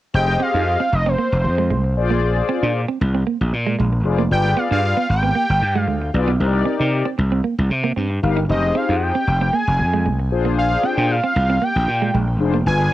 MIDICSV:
0, 0, Header, 1, 6, 480
1, 0, Start_track
1, 0, Tempo, 521739
1, 129, Time_signature, 4, 2, 24, 8
1, 11899, End_track
2, 0, Start_track
2, 0, Title_t, "Analog synth lead"
2, 0, Program_c, 0, 81
2, 139, Note_on_c, 0, 79, 127
2, 385, Note_on_c, 0, 77, 106
2, 398, Note_off_c, 0, 79, 0
2, 868, Note_on_c, 0, 75, 107
2, 882, Note_off_c, 0, 77, 0
2, 997, Note_on_c, 0, 72, 88
2, 1011, Note_off_c, 0, 75, 0
2, 1820, Note_off_c, 0, 72, 0
2, 3977, Note_on_c, 0, 79, 127
2, 4216, Note_on_c, 0, 77, 100
2, 4229, Note_off_c, 0, 79, 0
2, 4337, Note_off_c, 0, 77, 0
2, 4343, Note_on_c, 0, 77, 102
2, 4668, Note_off_c, 0, 77, 0
2, 4696, Note_on_c, 0, 79, 119
2, 5340, Note_off_c, 0, 79, 0
2, 5340, Note_on_c, 0, 77, 119
2, 5616, Note_off_c, 0, 77, 0
2, 7823, Note_on_c, 0, 75, 92
2, 8062, Note_on_c, 0, 77, 79
2, 8076, Note_off_c, 0, 75, 0
2, 8238, Note_on_c, 0, 78, 65
2, 8252, Note_off_c, 0, 77, 0
2, 8299, Note_on_c, 0, 79, 97
2, 8313, Note_off_c, 0, 78, 0
2, 8778, Note_on_c, 0, 80, 106
2, 8792, Note_off_c, 0, 79, 0
2, 9254, Note_off_c, 0, 80, 0
2, 9736, Note_on_c, 0, 77, 117
2, 9982, Note_on_c, 0, 79, 97
2, 9995, Note_off_c, 0, 77, 0
2, 10223, Note_on_c, 0, 77, 108
2, 10237, Note_off_c, 0, 79, 0
2, 10703, Note_on_c, 0, 79, 110
2, 10717, Note_off_c, 0, 77, 0
2, 11176, Note_off_c, 0, 79, 0
2, 11655, Note_on_c, 0, 80, 116
2, 11899, Note_off_c, 0, 80, 0
2, 11899, End_track
3, 0, Start_track
3, 0, Title_t, "Analog polysynth"
3, 0, Program_c, 1, 90
3, 123, Note_on_c, 1, 67, 74
3, 126, Note_on_c, 1, 68, 64
3, 129, Note_on_c, 1, 72, 68
3, 132, Note_on_c, 1, 75, 90
3, 732, Note_off_c, 1, 67, 0
3, 733, Note_off_c, 1, 68, 0
3, 734, Note_off_c, 1, 72, 0
3, 736, Note_off_c, 1, 75, 0
3, 1803, Note_on_c, 1, 65, 94
3, 1807, Note_on_c, 1, 68, 83
3, 1809, Note_on_c, 1, 72, 88
3, 1811, Note_on_c, 1, 74, 107
3, 2577, Note_off_c, 1, 65, 0
3, 2579, Note_off_c, 1, 68, 0
3, 2580, Note_off_c, 1, 72, 0
3, 2581, Note_off_c, 1, 74, 0
3, 3722, Note_on_c, 1, 65, 91
3, 3723, Note_on_c, 1, 68, 85
3, 3728, Note_on_c, 1, 72, 81
3, 3729, Note_on_c, 1, 74, 91
3, 3880, Note_off_c, 1, 65, 0
3, 3881, Note_off_c, 1, 68, 0
3, 3884, Note_off_c, 1, 72, 0
3, 3884, Note_off_c, 1, 74, 0
3, 3961, Note_on_c, 1, 65, 73
3, 3964, Note_on_c, 1, 68, 68
3, 3965, Note_on_c, 1, 71, 67
3, 3968, Note_on_c, 1, 74, 83
3, 4570, Note_off_c, 1, 65, 0
3, 4572, Note_off_c, 1, 68, 0
3, 4572, Note_off_c, 1, 71, 0
3, 4574, Note_off_c, 1, 74, 0
3, 5642, Note_on_c, 1, 65, 88
3, 5645, Note_on_c, 1, 68, 78
3, 5649, Note_on_c, 1, 71, 83
3, 5649, Note_on_c, 1, 74, 101
3, 5801, Note_off_c, 1, 65, 0
3, 5802, Note_off_c, 1, 68, 0
3, 5804, Note_off_c, 1, 71, 0
3, 5804, Note_off_c, 1, 74, 0
3, 5882, Note_on_c, 1, 63, 90
3, 5884, Note_on_c, 1, 67, 78
3, 5888, Note_on_c, 1, 70, 78
3, 5890, Note_on_c, 1, 72, 78
3, 5947, Note_on_c, 1, 74, 100
3, 5950, Note_off_c, 1, 72, 0
3, 6491, Note_off_c, 1, 63, 0
3, 6492, Note_off_c, 1, 67, 0
3, 6494, Note_off_c, 1, 70, 0
3, 6524, Note_off_c, 1, 74, 0
3, 7563, Note_on_c, 1, 63, 94
3, 7566, Note_on_c, 1, 67, 88
3, 7568, Note_on_c, 1, 70, 86
3, 7570, Note_on_c, 1, 77, 99
3, 7721, Note_off_c, 1, 63, 0
3, 7722, Note_off_c, 1, 67, 0
3, 7723, Note_off_c, 1, 70, 0
3, 7725, Note_off_c, 1, 77, 0
3, 7804, Note_on_c, 1, 63, 67
3, 7806, Note_on_c, 1, 67, 73
3, 7808, Note_on_c, 1, 68, 68
3, 7812, Note_on_c, 1, 72, 80
3, 8412, Note_off_c, 1, 63, 0
3, 8413, Note_off_c, 1, 67, 0
3, 8414, Note_off_c, 1, 68, 0
3, 8416, Note_off_c, 1, 72, 0
3, 9485, Note_on_c, 1, 62, 87
3, 9489, Note_on_c, 1, 65, 91
3, 9491, Note_on_c, 1, 68, 96
3, 9493, Note_on_c, 1, 72, 104
3, 10258, Note_off_c, 1, 62, 0
3, 10260, Note_off_c, 1, 65, 0
3, 10261, Note_off_c, 1, 68, 0
3, 10262, Note_off_c, 1, 72, 0
3, 11404, Note_on_c, 1, 62, 93
3, 11406, Note_on_c, 1, 65, 76
3, 11409, Note_on_c, 1, 68, 85
3, 11411, Note_on_c, 1, 72, 101
3, 11561, Note_off_c, 1, 62, 0
3, 11563, Note_off_c, 1, 65, 0
3, 11564, Note_off_c, 1, 68, 0
3, 11565, Note_off_c, 1, 72, 0
3, 11646, Note_on_c, 1, 62, 78
3, 11648, Note_on_c, 1, 65, 72
3, 11650, Note_on_c, 1, 68, 67
3, 11653, Note_on_c, 1, 71, 79
3, 11899, Note_off_c, 1, 62, 0
3, 11899, Note_off_c, 1, 65, 0
3, 11899, Note_off_c, 1, 68, 0
3, 11899, Note_off_c, 1, 71, 0
3, 11899, End_track
4, 0, Start_track
4, 0, Title_t, "Clean electric guitar"
4, 0, Program_c, 2, 27
4, 368, Note_on_c, 2, 60, 86
4, 458, Note_off_c, 2, 60, 0
4, 497, Note_on_c, 2, 63, 74
4, 576, Note_off_c, 2, 63, 0
4, 736, Note_on_c, 2, 60, 83
4, 816, Note_off_c, 2, 60, 0
4, 977, Note_on_c, 2, 60, 86
4, 1057, Note_off_c, 2, 60, 0
4, 1089, Note_on_c, 2, 58, 90
4, 1179, Note_off_c, 2, 58, 0
4, 1456, Note_on_c, 2, 56, 85
4, 1536, Note_off_c, 2, 56, 0
4, 1568, Note_on_c, 2, 56, 80
4, 1658, Note_off_c, 2, 56, 0
4, 1934, Note_on_c, 2, 58, 80
4, 2015, Note_off_c, 2, 58, 0
4, 2288, Note_on_c, 2, 60, 87
4, 2378, Note_off_c, 2, 60, 0
4, 2416, Note_on_c, 2, 62, 77
4, 2496, Note_off_c, 2, 62, 0
4, 2653, Note_on_c, 2, 60, 85
4, 2734, Note_off_c, 2, 60, 0
4, 2895, Note_on_c, 2, 60, 75
4, 2975, Note_off_c, 2, 60, 0
4, 3007, Note_on_c, 2, 58, 91
4, 3098, Note_off_c, 2, 58, 0
4, 3373, Note_on_c, 2, 56, 83
4, 3454, Note_off_c, 2, 56, 0
4, 3485, Note_on_c, 2, 56, 69
4, 3576, Note_off_c, 2, 56, 0
4, 3851, Note_on_c, 2, 58, 85
4, 3933, Note_off_c, 2, 58, 0
4, 4203, Note_on_c, 2, 59, 81
4, 4295, Note_off_c, 2, 59, 0
4, 4331, Note_on_c, 2, 62, 81
4, 4413, Note_off_c, 2, 62, 0
4, 4572, Note_on_c, 2, 59, 82
4, 4653, Note_off_c, 2, 59, 0
4, 4810, Note_on_c, 2, 59, 75
4, 4892, Note_off_c, 2, 59, 0
4, 4924, Note_on_c, 2, 58, 89
4, 5015, Note_off_c, 2, 58, 0
4, 5294, Note_on_c, 2, 56, 80
4, 5375, Note_off_c, 2, 56, 0
4, 5408, Note_on_c, 2, 56, 69
4, 5498, Note_off_c, 2, 56, 0
4, 5776, Note_on_c, 2, 59, 72
4, 5856, Note_off_c, 2, 59, 0
4, 6123, Note_on_c, 2, 60, 82
4, 6215, Note_off_c, 2, 60, 0
4, 6252, Note_on_c, 2, 63, 71
4, 6333, Note_off_c, 2, 63, 0
4, 6490, Note_on_c, 2, 60, 79
4, 6572, Note_off_c, 2, 60, 0
4, 6734, Note_on_c, 2, 60, 75
4, 6814, Note_off_c, 2, 60, 0
4, 6845, Note_on_c, 2, 58, 89
4, 6937, Note_off_c, 2, 58, 0
4, 7210, Note_on_c, 2, 58, 92
4, 7292, Note_off_c, 2, 58, 0
4, 7326, Note_on_c, 2, 60, 78
4, 7417, Note_off_c, 2, 60, 0
4, 7697, Note_on_c, 2, 63, 81
4, 7776, Note_off_c, 2, 63, 0
4, 8050, Note_on_c, 2, 60, 89
4, 8140, Note_off_c, 2, 60, 0
4, 8178, Note_on_c, 2, 63, 85
4, 8257, Note_off_c, 2, 63, 0
4, 8418, Note_on_c, 2, 60, 89
4, 8497, Note_off_c, 2, 60, 0
4, 8660, Note_on_c, 2, 60, 81
4, 8738, Note_off_c, 2, 60, 0
4, 8769, Note_on_c, 2, 58, 87
4, 8859, Note_off_c, 2, 58, 0
4, 9140, Note_on_c, 2, 56, 82
4, 9219, Note_off_c, 2, 56, 0
4, 9253, Note_on_c, 2, 56, 75
4, 9341, Note_off_c, 2, 56, 0
4, 9615, Note_on_c, 2, 58, 79
4, 9695, Note_off_c, 2, 58, 0
4, 9967, Note_on_c, 2, 60, 88
4, 10058, Note_off_c, 2, 60, 0
4, 10093, Note_on_c, 2, 62, 73
4, 10174, Note_off_c, 2, 62, 0
4, 10336, Note_on_c, 2, 60, 86
4, 10416, Note_off_c, 2, 60, 0
4, 10577, Note_on_c, 2, 60, 77
4, 10657, Note_off_c, 2, 60, 0
4, 10689, Note_on_c, 2, 58, 94
4, 10779, Note_off_c, 2, 58, 0
4, 11058, Note_on_c, 2, 56, 85
4, 11137, Note_off_c, 2, 56, 0
4, 11169, Note_on_c, 2, 56, 74
4, 11259, Note_off_c, 2, 56, 0
4, 11535, Note_on_c, 2, 58, 83
4, 11615, Note_off_c, 2, 58, 0
4, 11899, End_track
5, 0, Start_track
5, 0, Title_t, "Slap bass"
5, 0, Program_c, 3, 36
5, 130, Note_on_c, 3, 29, 108
5, 330, Note_off_c, 3, 29, 0
5, 499, Note_on_c, 3, 41, 82
5, 699, Note_off_c, 3, 41, 0
5, 853, Note_on_c, 3, 29, 83
5, 1052, Note_off_c, 3, 29, 0
5, 1217, Note_on_c, 3, 29, 93
5, 1330, Note_on_c, 3, 41, 99
5, 1343, Note_off_c, 3, 29, 0
5, 1569, Note_on_c, 3, 36, 88
5, 1583, Note_off_c, 3, 41, 0
5, 1810, Note_off_c, 3, 36, 0
5, 1810, Note_on_c, 3, 34, 82
5, 2211, Note_off_c, 3, 34, 0
5, 2417, Note_on_c, 3, 46, 87
5, 2617, Note_off_c, 3, 46, 0
5, 2770, Note_on_c, 3, 36, 97
5, 2971, Note_off_c, 3, 36, 0
5, 3136, Note_on_c, 3, 34, 95
5, 3231, Note_off_c, 3, 34, 0
5, 3249, Note_on_c, 3, 46, 100
5, 3450, Note_off_c, 3, 46, 0
5, 3491, Note_on_c, 3, 34, 88
5, 3728, Note_off_c, 3, 34, 0
5, 3728, Note_on_c, 3, 29, 80
5, 3930, Note_off_c, 3, 29, 0
5, 3967, Note_on_c, 3, 31, 105
5, 4169, Note_off_c, 3, 31, 0
5, 4335, Note_on_c, 3, 43, 86
5, 4537, Note_off_c, 3, 43, 0
5, 4687, Note_on_c, 3, 32, 89
5, 4889, Note_off_c, 3, 32, 0
5, 5056, Note_on_c, 3, 31, 93
5, 5150, Note_off_c, 3, 31, 0
5, 5168, Note_on_c, 3, 43, 95
5, 5407, Note_off_c, 3, 43, 0
5, 5407, Note_on_c, 3, 38, 91
5, 5609, Note_off_c, 3, 38, 0
5, 5650, Note_on_c, 3, 35, 90
5, 5851, Note_off_c, 3, 35, 0
5, 5890, Note_on_c, 3, 36, 98
5, 6091, Note_off_c, 3, 36, 0
5, 6259, Note_on_c, 3, 48, 83
5, 6459, Note_off_c, 3, 48, 0
5, 6611, Note_on_c, 3, 36, 92
5, 6811, Note_off_c, 3, 36, 0
5, 6978, Note_on_c, 3, 36, 91
5, 7072, Note_off_c, 3, 36, 0
5, 7090, Note_on_c, 3, 48, 104
5, 7291, Note_off_c, 3, 48, 0
5, 7331, Note_on_c, 3, 43, 76
5, 7531, Note_off_c, 3, 43, 0
5, 7571, Note_on_c, 3, 31, 82
5, 7772, Note_off_c, 3, 31, 0
5, 7813, Note_on_c, 3, 29, 112
5, 8012, Note_off_c, 3, 29, 0
5, 8179, Note_on_c, 3, 41, 87
5, 8379, Note_off_c, 3, 41, 0
5, 8531, Note_on_c, 3, 29, 91
5, 8731, Note_off_c, 3, 29, 0
5, 8899, Note_on_c, 3, 29, 93
5, 9012, Note_on_c, 3, 41, 97
5, 9026, Note_off_c, 3, 29, 0
5, 9252, Note_on_c, 3, 36, 78
5, 9265, Note_off_c, 3, 41, 0
5, 9492, Note_off_c, 3, 36, 0
5, 9492, Note_on_c, 3, 34, 81
5, 9893, Note_off_c, 3, 34, 0
5, 10096, Note_on_c, 3, 46, 89
5, 10297, Note_off_c, 3, 46, 0
5, 10450, Note_on_c, 3, 36, 100
5, 10651, Note_off_c, 3, 36, 0
5, 10817, Note_on_c, 3, 34, 95
5, 10911, Note_off_c, 3, 34, 0
5, 10931, Note_on_c, 3, 46, 83
5, 11132, Note_off_c, 3, 46, 0
5, 11171, Note_on_c, 3, 34, 80
5, 11408, Note_off_c, 3, 34, 0
5, 11408, Note_on_c, 3, 29, 79
5, 11610, Note_off_c, 3, 29, 0
5, 11650, Note_on_c, 3, 31, 112
5, 11850, Note_off_c, 3, 31, 0
5, 11899, End_track
6, 0, Start_track
6, 0, Title_t, "Muted clean electric guitar strokes"
6, 255, Note_on_c, 9, 29, 42
6, 347, Note_off_c, 9, 29, 0
6, 850, Note_on_c, 9, 29, 42
6, 942, Note_off_c, 9, 29, 0
6, 1328, Note_on_c, 9, 29, 51
6, 1420, Note_off_c, 9, 29, 0
6, 1694, Note_on_c, 9, 29, 46
6, 1786, Note_off_c, 9, 29, 0
6, 2175, Note_on_c, 9, 29, 39
6, 2267, Note_off_c, 9, 29, 0
6, 2771, Note_on_c, 9, 29, 44
6, 2863, Note_off_c, 9, 29, 0
6, 3248, Note_on_c, 9, 29, 49
6, 3340, Note_off_c, 9, 29, 0
6, 3613, Note_on_c, 9, 29, 50
6, 3705, Note_off_c, 9, 29, 0
6, 4091, Note_on_c, 9, 29, 43
6, 4183, Note_off_c, 9, 29, 0
6, 4685, Note_on_c, 9, 29, 44
6, 4777, Note_off_c, 9, 29, 0
6, 5166, Note_on_c, 9, 29, 47
6, 5258, Note_off_c, 9, 29, 0
6, 5535, Note_on_c, 9, 29, 50
6, 5627, Note_off_c, 9, 29, 0
6, 6011, Note_on_c, 9, 29, 42
6, 6103, Note_off_c, 9, 29, 0
6, 6604, Note_on_c, 9, 29, 42
6, 6696, Note_off_c, 9, 29, 0
6, 7086, Note_on_c, 9, 29, 46
6, 7178, Note_off_c, 9, 29, 0
6, 7453, Note_on_c, 9, 29, 44
6, 7545, Note_off_c, 9, 29, 0
6, 7939, Note_on_c, 9, 29, 43
6, 8031, Note_off_c, 9, 29, 0
6, 8533, Note_on_c, 9, 29, 39
6, 8625, Note_off_c, 9, 29, 0
6, 9011, Note_on_c, 9, 29, 47
6, 9103, Note_off_c, 9, 29, 0
6, 9379, Note_on_c, 9, 29, 46
6, 9471, Note_off_c, 9, 29, 0
6, 9857, Note_on_c, 9, 29, 42
6, 9949, Note_off_c, 9, 29, 0
6, 10449, Note_on_c, 9, 29, 43
6, 10541, Note_off_c, 9, 29, 0
6, 10932, Note_on_c, 9, 29, 50
6, 11024, Note_off_c, 9, 29, 0
6, 11295, Note_on_c, 9, 29, 45
6, 11387, Note_off_c, 9, 29, 0
6, 11774, Note_on_c, 9, 29, 39
6, 11866, Note_off_c, 9, 29, 0
6, 11899, End_track
0, 0, End_of_file